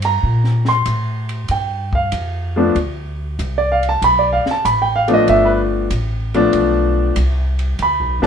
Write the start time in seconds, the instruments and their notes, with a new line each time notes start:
Already playing: upright bass G2
0.02 grand piano A#5, ride
0.23 upright bass A#2, kick
0.44 snare
0.65 grand piano C6, snare
0.85 upright bass A2, kick, hi-hat pedal, ride
1.29 ride
1.48 upright bass G2, grand piano G5, kick, ride
1.93 grand piano F5, kick
2.12 upright bass F2, kick, hi-hat pedal, ride
2.56 grand piano F3 A3 B3 D4
2.75 upright bass D2, kick, ride
3.39 upright bass C2, kick, hi-hat pedal, ride
3.58 grand piano D5
3.72 grand piano F5
3.83 ride
3.89 grand piano A5
4.02 upright bass B1, grand piano B5, kick, ride
4.19 grand piano D5
4.33 grand piano F5
4.45 muted upright bass stroke, snare
4.51 grand piano A5
4.65 upright bass A1, grand piano B5, kick, hi-hat pedal, ride
4.82 grand piano G5
4.96 grand piano F5
5.08 grand piano F3 A3 B3 D4, ride
5.14 grand piano D#5
5.27 upright bass G1, grand piano E5, kick, ride
5.45 grand piano B4
5.90 upright bass A1, kick, hi-hat pedal, ride
6.34 grand piano F3 A3 B3 D4, ride
6.53 upright bass B1, kick, ride
7.16 upright bass C2, kick, hi-hat pedal, ride
7.59 ride
7.79 upright bass D2, grand piano B5, kick, ride
7.99 upright bass B1
8.20 upright bass G1, grand piano F3 A3 B3 D4 A5, snare